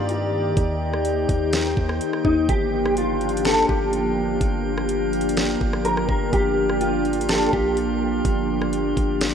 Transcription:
Already playing: 808-style bass G2, ambient pad D#3 A#3 G4 D5, synth texture D#4 D5 G5
0.09 closed hi-hat
0.57 808-style bass D#2, ambient pad D#4, synth texture C5, kick, closed hi-hat
0.93 cross-stick
1.05 closed hi-hat
1.29 808-style bass D#2, kick, closed hi-hat
1.53 snare, closed hi-hat
1.77 808-style bass D#2, kick
1.89 cross-stick
2.01 closed hi-hat
2.13 cross-stick
2.25 808-style bass D#2, clean electric guitar D#4, kick
2.49 808-style bass G1, ambient pad F3 D4, synth texture F4 A#4, clean electric guitar G4, kick, closed hi-hat
2.86 cross-stick
2.97 clean electric guitar F4, closed hi-hat
3.21 closed hi-hat
3.29 closed hi-hat
3.37 closed hi-hat
3.45 clean electric guitar A4, snare, closed hi-hat
3.68 808-style bass G1, clean electric guitar G4, kick
3.93 closed hi-hat
4.41 808-style bass G1, kick, closed hi-hat
4.78 cross-stick
4.89 closed hi-hat
5.13 closed hi-hat
5.21 closed hi-hat
5.29 closed hi-hat
5.37 snare, closed hi-hat
5.61 808-style bass G1, kick
5.73 cross-stick
5.85 clean electric guitar A#4, closed hi-hat
5.97 cross-stick
6.09 808-style bass G1, clean electric guitar A#4, kick
6.33 808-style bass G1, clean electric guitar G4, kick, closed hi-hat
6.70 cross-stick
6.81 clean electric guitar F4, closed hi-hat
7.05 closed hi-hat
7.13 closed hi-hat
7.21 closed hi-hat
7.29 clean electric guitar A4, snare, closed hi-hat
7.53 808-style bass A#1, clean electric guitar G4, kick
7.77 closed hi-hat
8.25 808-style bass G1, kick, closed hi-hat
8.62 cross-stick
8.73 closed hi-hat
8.97 808-style bass G1, kick, closed hi-hat
9.21 snare, closed hi-hat

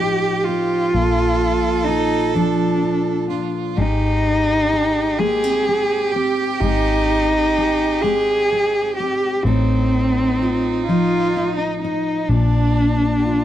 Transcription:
Already playing: fingered electric bass A1, steel-string acoustic guitar A2 F3 A4, cello G4, violin G4
0.01 steel-string acoustic guitar D#4
0.44 cello F4
0.49 steel-string acoustic guitar C4
0.94 fingered electric bass A#1, steel-string acoustic guitar A#2, violin A4
1.84 cello D#4
1.89 steel-string acoustic guitar F4
2.34 steel-string acoustic guitar F3 A4, cello D4
2.83 steel-string acoustic guitar F4
3.29 steel-string acoustic guitar D4, violin F4
3.76 fingered electric bass G#1, steel-string acoustic guitar G#2 G#4, cello D#4, violin G4
4.73 steel-string acoustic guitar G#4
5.18 steel-string acoustic guitar G#3 A#3, cello G#4
5.44 steel-string acoustic guitar C4
5.68 steel-string acoustic guitar C4
6.12 cello G4
6.16 steel-string acoustic guitar C4
6.60 fingered electric bass G#1, steel-string acoustic guitar G#2, cello D#4
6.64 steel-string acoustic guitar G#4
7.58 steel-string acoustic guitar G#4
8.01 steel-string acoustic guitar G#3 C4, cello G#4
8.52 steel-string acoustic guitar C4
8.97 steel-string acoustic guitar C4, cello G4
9.43 fingered electric bass A1, steel-string acoustic guitar A2 A4, cello C4, violin D#4
10.42 steel-string acoustic guitar F4
10.86 steel-string acoustic guitar F3 D#4, cello F4
11.37 steel-string acoustic guitar D#4
11.57 cello D#4
11.81 cello D#4, steel-string acoustic guitar D#4
12.29 fingered electric bass A#1, steel-string acoustic guitar A#2 A4, cello D4, violin D4
13.18 violin G4
13.24 violin F4, steel-string acoustic guitar F4

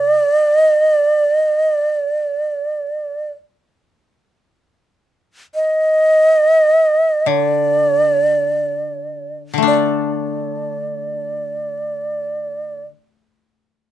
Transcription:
Already playing: koto C3, shakuhachi D5
0.55 shakuhachi D#5
0.87 shakuhachi D5
1.41 shakuhachi D#5
1.73 shakuhachi D5
5.55 shakuhachi D#5
7.26 koto D3, shakuhachi C#5
7.38 shakuhachi D5
9.54 koto D3
9.58 koto A3
9.62 koto D4
9.67 shakuhachi D5

